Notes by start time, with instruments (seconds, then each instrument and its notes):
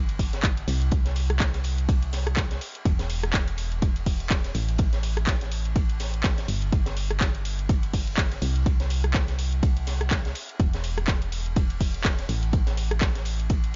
Already playing: fm bass G1
0.08 closed hi-hat, ride
0.19 kick, open hi-hat, ride
0.33 snare, closed hi-hat
0.43 kick, clap, closed hi-hat, ride
0.57 closed hi-hat
0.68 fm bass C2, open hi-hat, ride
0.82 closed hi-hat
0.91 kick, closed hi-hat, ride
1.05 snare, closed hi-hat
1.16 open hi-hat, ride
1.30 cross-stick, closed hi-hat
1.40 kick, snare, clap, closed hi-hat, ride
1.54 snare, closed hi-hat
1.64 open hi-hat, ride
1.78 closed hi-hat
1.89 kick, closed hi-hat, ride
2.03 closed hi-hat
2.13 snare, open hi-hat, ride
2.27 cross-stick, closed hi-hat
2.36 kick, snare, clap, closed hi-hat, ride
2.51 snare, closed hi-hat
2.61 open hi-hat, ride
2.75 closed hi-hat
2.85 fm bass E1, kick, closed hi-hat, ride
2.99 snare, closed hi-hat
3.10 open hi-hat, ride
3.23 cross-stick, closed hi-hat
3.33 kick, snare, clap, closed hi-hat, ride
3.47 closed hi-hat, ride
3.58 open hi-hat, ride
3.72 closed hi-hat
3.82 kick, closed hi-hat, ride
3.96 closed hi-hat, ride
4.06 kick, open hi-hat
4.20 closed hi-hat
4.30 kick, snare, clap, closed hi-hat, ride
4.44 snare, closed hi-hat
4.54 fm bass A1, open hi-hat, ride
4.69 closed hi-hat
4.78 kick, closed hi-hat, ride
4.93 snare, closed hi-hat
5.03 open hi-hat, ride
5.17 cross-stick, closed hi-hat
5.27 kick, snare, clap, closed hi-hat, ride
5.41 snare, closed hi-hat
5.52 open hi-hat, ride
5.65 closed hi-hat
5.76 kick, closed hi-hat, ride
5.90 closed hi-hat
6.00 snare, open hi-hat, ride
6.14 closed hi-hat
6.24 kick, snare, clap, closed hi-hat, ride
6.38 snare, closed hi-hat
6.48 fm bass G1, open hi-hat, ride
6.62 closed hi-hat
6.72 kick, closed hi-hat, ride
6.86 snare, closed hi-hat
6.97 open hi-hat, ride
7.11 cross-stick, closed hi-hat
7.20 kick, snare, clap, closed hi-hat, ride
7.34 closed hi-hat, ride
7.45 open hi-hat, ride
7.59 closed hi-hat
7.69 kick, closed hi-hat, ride
7.83 closed hi-hat, ride
7.94 kick, open hi-hat
8.07 closed hi-hat
8.17 kick, snare, clap, closed hi-hat, ride
8.32 snare, closed hi-hat
8.42 fm bass C2, open hi-hat, ride
8.56 closed hi-hat
8.66 kick, closed hi-hat, ride
8.80 snare, closed hi-hat
8.90 open hi-hat, ride
9.04 cross-stick, closed hi-hat
9.14 kick, snare, clap, closed hi-hat, ride
9.28 snare, closed hi-hat
9.39 open hi-hat, ride
9.52 closed hi-hat
9.63 kick, closed hi-hat, ride
9.77 closed hi-hat
9.87 snare, open hi-hat, ride
10.01 cross-stick, closed hi-hat
10.11 kick, snare, clap, closed hi-hat, ride
10.25 snare, closed hi-hat
10.35 open hi-hat, ride
10.49 closed hi-hat
10.60 fm bass E1, kick, closed hi-hat, ride
10.73 snare, closed hi-hat
10.84 open hi-hat, ride
10.98 cross-stick, closed hi-hat
11.07 kick, snare, clap, closed hi-hat, ride
11.22 closed hi-hat, ride
11.32 open hi-hat, ride
11.46 closed hi-hat
11.56 kick, closed hi-hat, ride
11.70 closed hi-hat, ride
11.81 kick, open hi-hat
11.94 closed hi-hat
12.04 kick, snare, clap, closed hi-hat, ride
12.19 snare, closed hi-hat
12.29 fm bass A1, open hi-hat, ride
12.43 closed hi-hat
12.53 kick, closed hi-hat, ride
12.67 snare, closed hi-hat
12.77 open hi-hat, ride
12.91 cross-stick, closed hi-hat
13.01 kick, snare, clap, closed hi-hat, ride
13.15 snare, closed hi-hat
13.25 open hi-hat, ride
13.40 closed hi-hat
13.50 kick, closed hi-hat, ride
13.64 closed hi-hat